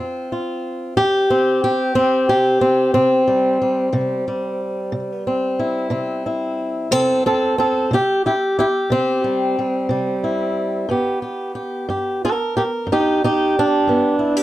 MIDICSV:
0, 0, Header, 1, 2, 480
1, 0, Start_track
1, 0, Key_signature, 0, "major"
1, 0, Tempo, 662983
1, 2131, Time_signature, 12, 3, 24, 8
1, 10447, End_track
2, 0, Start_track
2, 0, Title_t, "Steel-string acoustic guitar"
2, 0, Program_c, 0, 25
2, 0, Note_on_c, 0, 41, 77
2, 0, Note_on_c, 0, 60, 50
2, 0, Note_on_c, 0, 65, 44
2, 224, Note_off_c, 0, 65, 0
2, 233, Note_on_c, 0, 65, 45
2, 408, Note_off_c, 0, 41, 0
2, 699, Note_off_c, 0, 65, 0
2, 702, Note_on_c, 0, 67, 112
2, 709, Note_on_c, 0, 41, 77
2, 941, Note_off_c, 0, 60, 0
2, 944, Note_on_c, 0, 60, 84
2, 1133, Note_off_c, 0, 41, 0
2, 1177, Note_off_c, 0, 67, 0
2, 1186, Note_on_c, 0, 67, 104
2, 1405, Note_off_c, 0, 60, 0
2, 1413, Note_on_c, 0, 60, 97
2, 1417, Note_on_c, 0, 41, 73
2, 1651, Note_off_c, 0, 67, 0
2, 1660, Note_on_c, 0, 67, 98
2, 1846, Note_off_c, 0, 41, 0
2, 1883, Note_off_c, 0, 60, 0
2, 1891, Note_on_c, 0, 60, 85
2, 2120, Note_off_c, 0, 60, 0
2, 2129, Note_on_c, 0, 60, 93
2, 2135, Note_off_c, 0, 67, 0
2, 2136, Note_on_c, 0, 48, 69
2, 2371, Note_on_c, 0, 55, 44
2, 2565, Note_off_c, 0, 48, 0
2, 2615, Note_off_c, 0, 55, 0
2, 2618, Note_on_c, 0, 55, 47
2, 2839, Note_off_c, 0, 55, 0
2, 2842, Note_on_c, 0, 55, 51
2, 2846, Note_on_c, 0, 48, 78
2, 3093, Note_off_c, 0, 55, 0
2, 3096, Note_on_c, 0, 55, 48
2, 3279, Note_off_c, 0, 48, 0
2, 3563, Note_on_c, 0, 48, 74
2, 3806, Note_off_c, 0, 60, 0
2, 3815, Note_on_c, 0, 60, 49
2, 3997, Note_off_c, 0, 48, 0
2, 4050, Note_on_c, 0, 64, 47
2, 4269, Note_off_c, 0, 60, 0
2, 4272, Note_on_c, 0, 48, 76
2, 4278, Note_on_c, 0, 60, 51
2, 4524, Note_off_c, 0, 64, 0
2, 4533, Note_on_c, 0, 64, 45
2, 4711, Note_off_c, 0, 48, 0
2, 4973, Note_off_c, 0, 60, 0
2, 5004, Note_on_c, 0, 48, 70
2, 5008, Note_off_c, 0, 64, 0
2, 5008, Note_on_c, 0, 60, 77
2, 5008, Note_on_c, 0, 69, 90
2, 5245, Note_off_c, 0, 69, 0
2, 5246, Note_off_c, 0, 60, 0
2, 5256, Note_on_c, 0, 60, 78
2, 5260, Note_on_c, 0, 69, 82
2, 5438, Note_off_c, 0, 48, 0
2, 5481, Note_off_c, 0, 60, 0
2, 5489, Note_on_c, 0, 60, 74
2, 5491, Note_off_c, 0, 69, 0
2, 5500, Note_on_c, 0, 69, 82
2, 5726, Note_on_c, 0, 48, 74
2, 5728, Note_off_c, 0, 60, 0
2, 5733, Note_off_c, 0, 69, 0
2, 5743, Note_on_c, 0, 64, 80
2, 5747, Note_off_c, 0, 64, 0
2, 5750, Note_on_c, 0, 67, 89
2, 5975, Note_off_c, 0, 67, 0
2, 5979, Note_on_c, 0, 64, 62
2, 5984, Note_on_c, 0, 67, 74
2, 6011, Note_off_c, 0, 64, 0
2, 6158, Note_off_c, 0, 48, 0
2, 6215, Note_off_c, 0, 67, 0
2, 6217, Note_on_c, 0, 64, 78
2, 6225, Note_on_c, 0, 67, 88
2, 6250, Note_off_c, 0, 64, 0
2, 6444, Note_on_c, 0, 48, 69
2, 6456, Note_on_c, 0, 60, 98
2, 6683, Note_off_c, 0, 55, 0
2, 6691, Note_on_c, 0, 55, 46
2, 6878, Note_off_c, 0, 48, 0
2, 6936, Note_off_c, 0, 67, 0
2, 6938, Note_off_c, 0, 55, 0
2, 6941, Note_on_c, 0, 55, 46
2, 7161, Note_on_c, 0, 48, 68
2, 7168, Note_off_c, 0, 55, 0
2, 7171, Note_on_c, 0, 55, 48
2, 7412, Note_on_c, 0, 64, 43
2, 7597, Note_off_c, 0, 48, 0
2, 7881, Note_on_c, 0, 43, 71
2, 7885, Note_off_c, 0, 55, 0
2, 7888, Note_on_c, 0, 59, 48
2, 7890, Note_off_c, 0, 64, 0
2, 7893, Note_off_c, 0, 60, 0
2, 7900, Note_on_c, 0, 67, 50
2, 8121, Note_off_c, 0, 67, 0
2, 8124, Note_on_c, 0, 67, 40
2, 8318, Note_off_c, 0, 43, 0
2, 8359, Note_off_c, 0, 67, 0
2, 8362, Note_on_c, 0, 67, 46
2, 8605, Note_on_c, 0, 43, 72
2, 8611, Note_off_c, 0, 67, 0
2, 8614, Note_on_c, 0, 67, 47
2, 8863, Note_off_c, 0, 67, 0
2, 8866, Note_on_c, 0, 67, 76
2, 8869, Note_on_c, 0, 70, 89
2, 8897, Note_off_c, 0, 67, 0
2, 9041, Note_off_c, 0, 43, 0
2, 9096, Note_off_c, 0, 70, 0
2, 9098, Note_on_c, 0, 67, 75
2, 9105, Note_on_c, 0, 70, 77
2, 9133, Note_off_c, 0, 67, 0
2, 9315, Note_on_c, 0, 43, 74
2, 9338, Note_off_c, 0, 70, 0
2, 9355, Note_on_c, 0, 63, 73
2, 9358, Note_on_c, 0, 67, 84
2, 9579, Note_off_c, 0, 63, 0
2, 9586, Note_off_c, 0, 67, 0
2, 9588, Note_on_c, 0, 63, 81
2, 9594, Note_on_c, 0, 67, 95
2, 9757, Note_off_c, 0, 43, 0
2, 9821, Note_off_c, 0, 63, 0
2, 9839, Note_on_c, 0, 62, 93
2, 10044, Note_on_c, 0, 43, 69
2, 10046, Note_off_c, 0, 59, 0
2, 10054, Note_on_c, 0, 59, 48
2, 10271, Note_off_c, 0, 67, 0
2, 10274, Note_on_c, 0, 64, 45
2, 10401, Note_off_c, 0, 64, 0
2, 10401, Note_on_c, 0, 67, 42
2, 10447, Note_off_c, 0, 43, 0
2, 10447, Note_off_c, 0, 59, 0
2, 10447, Note_off_c, 0, 62, 0
2, 10447, Note_off_c, 0, 67, 0
2, 10447, End_track
0, 0, End_of_file